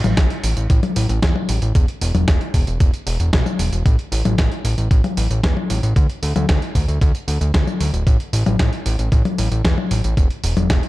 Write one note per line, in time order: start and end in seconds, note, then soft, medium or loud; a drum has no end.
0.04 0.15 A1 medium
0.04 closed hi-hat soft
0.04 high tom medium
0.04 tambourine soft
0.17 0.28 A1 loud
0.17 kick loud
0.17 snare loud
0.17 closed hi-hat medium
0.17 tambourine soft
0.30 closed hi-hat soft
0.43 0.54 A1 loud
0.43 open hi-hat loud
0.43 tambourine medium
0.57 0.68 A1 medium
0.57 closed hi-hat soft
0.57 tambourine soft
0.70 0.81 A1 loud
0.70 kick loud
0.70 closed hi-hat loud
0.70 tambourine soft
0.83 closed hi-hat soft
0.83 high tom medium
0.96 1.07 A1 medium
0.96 open hi-hat loud
0.96 tambourine medium
1.09 1.20 A1 medium
1.09 closed hi-hat soft
1.09 tambourine soft
1.22 1.33 E2 loud
1.22 kick loud
1.22 snare loud
1.22 closed hi-hat loud
1.22 tambourine soft
1.36 high tom medium
1.49 1.60 A1 medium
1.49 open hi-hat loud
1.49 tambourine medium
1.62 1.73 A1 medium
1.62 closed hi-hat soft
1.62 tambourine soft
1.75 1.86 E1 loud
1.75 kick loud
1.75 closed hi-hat loud
1.75 tambourine soft
1.88 closed hi-hat soft
2.01 2.12 E1 medium
2.01 open hi-hat loud
2.01 tambourine medium
2.15 2.25 E1 medium
2.15 closed hi-hat soft
2.15 high tom medium
2.15 tambourine soft
2.28 2.39 E1 loud
2.28 kick loud
2.28 snare loud
2.28 closed hi-hat loud
2.28 tambourine soft
2.41 closed hi-hat soft
2.54 2.65 E1 loud
2.54 kick medium
2.54 open hi-hat medium
2.54 tambourine medium
2.67 2.78 E1 medium
2.67 closed hi-hat soft
2.67 tambourine soft
2.80 2.91 E1 loud
2.80 kick loud
2.80 closed hi-hat loud
2.80 tambourine soft
2.94 closed hi-hat soft
2.94 tambourine soft
3.07 3.18 E1 loud
3.07 open hi-hat loud
3.07 tambourine medium
3.20 3.31 E1 medium
3.20 closed hi-hat soft
3.20 tambourine soft
3.33 3.44 B1 loud
3.33 kick loud
3.33 snare loud
3.33 closed hi-hat loud
3.33 tambourine soft
3.46 high tom medium
3.46 tambourine soft
3.59 3.70 E1 medium
3.59 open hi-hat medium
3.59 tambourine medium
3.72 3.83 E1 medium
3.72 closed hi-hat soft
3.72 tambourine soft
3.86 3.97 A1 loud
3.86 kick loud
3.86 closed hi-hat medium
3.86 tambourine soft
3.99 closed hi-hat soft
4.12 4.23 A1 loud
4.12 open hi-hat loud
4.12 tambourine medium
4.25 4.36 A1 medium
4.25 closed hi-hat soft
4.25 high tom medium
4.25 tambourine soft
4.38 4.49 A1 loud
4.38 kick loud
4.38 snare loud
4.38 closed hi-hat medium
4.38 tambourine soft
4.52 closed hi-hat soft
4.64 4.75 A1 loud
4.64 open hi-hat medium
4.64 tambourine medium
4.78 4.89 A1 medium
4.78 closed hi-hat soft
4.78 tambourine soft
4.91 5.02 A1 loud
4.91 kick loud
4.91 closed hi-hat loud
4.91 tambourine soft
5.04 closed hi-hat soft
5.04 high tom medium
5.17 5.28 A1 loud
5.17 open hi-hat loud
5.17 tambourine medium
5.30 5.41 A1 medium
5.30 closed hi-hat soft
5.30 tambourine soft
5.43 5.54 E2 loud
5.43 kick loud
5.43 snare loud
5.43 closed hi-hat loud
5.43 tambourine soft
5.57 high tom medium
5.70 5.81 A1 loud
5.70 open hi-hat medium
5.70 tambourine medium
5.83 5.94 A1 medium
5.83 closed hi-hat soft
5.83 tambourine soft
5.96 6.07 D2 loud
5.96 kick loud
5.96 closed hi-hat medium
5.96 tambourine soft
6.10 closed hi-hat soft
6.23 6.33 D2 medium
6.23 open hi-hat loud
6.23 tambourine medium
6.36 6.47 D2 medium
6.36 closed hi-hat soft
6.36 high tom medium
6.36 tambourine soft
6.49 6.60 D2 loud
6.49 kick loud
6.49 snare loud
6.49 closed hi-hat medium
6.49 tambourine soft
6.62 closed hi-hat soft
6.75 6.86 D2 loud
6.75 kick medium
6.75 open hi-hat medium
6.75 tambourine medium
6.88 6.99 D2 medium
6.88 closed hi-hat soft
6.88 tambourine soft
7.01 7.12 D2 loud
7.01 kick loud
7.01 closed hi-hat loud
7.01 tambourine soft
7.15 closed hi-hat soft
7.15 tambourine soft
7.28 7.39 D2 loud
7.28 open hi-hat loud
7.28 tambourine medium
7.41 7.52 D2 medium
7.41 closed hi-hat soft
7.41 tambourine soft
7.54 7.65 D2 loud
7.54 kick loud
7.54 snare loud
7.54 closed hi-hat loud
7.54 tambourine soft
7.67 high tom medium
7.67 tambourine soft
7.80 7.91 D2 loud
7.80 open hi-hat medium
7.80 tambourine medium
7.94 8.04 D1 medium
7.94 closed hi-hat soft
7.94 tambourine soft
8.07 8.18 A1 loud
8.07 kick loud
8.07 closed hi-hat medium
8.07 tambourine soft
8.20 closed hi-hat soft
8.33 8.44 A1 loud
8.33 open hi-hat loud
8.33 tambourine medium
8.46 8.57 A1 medium
8.46 closed hi-hat soft
8.46 high tom medium
8.46 tambourine soft
8.59 8.70 A1 loud
8.59 kick loud
8.59 snare loud
8.59 closed hi-hat medium
8.59 tambourine soft
8.73 closed hi-hat soft
8.86 8.97 A1 loud
8.86 open hi-hat medium
8.86 tambourine medium
8.99 9.10 A1 medium
8.99 closed hi-hat soft
8.99 tambourine soft
9.12 9.23 A1 loud
9.12 kick loud
9.12 closed hi-hat medium
9.12 tambourine soft
9.25 closed hi-hat soft
9.25 high tom medium
9.38 9.49 A1 loud
9.38 open hi-hat loud
9.38 tambourine medium
9.51 9.62 A1 medium
9.51 closed hi-hat soft
9.51 tambourine soft
9.65 9.75 E2 loud
9.65 kick loud
9.65 snare loud
9.65 closed hi-hat medium
9.65 tambourine soft
9.78 high tom medium
9.91 10.02 A1 medium
9.91 open hi-hat medium
9.91 tambourine medium
10.04 10.15 A1 medium
10.04 closed hi-hat soft
10.04 tambourine soft
10.17 10.28 E1 loud
10.17 kick loud
10.17 closed hi-hat medium
10.17 tambourine soft
10.30 closed hi-hat soft
10.44 10.54 E1 loud
10.44 open hi-hat loud
10.44 tambourine medium
10.57 10.68 E1 medium
10.57 closed hi-hat soft
10.57 high tom medium
10.57 tambourine soft
10.70 10.81 E1 loud
10.70 kick loud
10.70 snare loud
10.70 closed hi-hat medium
10.70 tambourine soft
10.83 closed hi-hat soft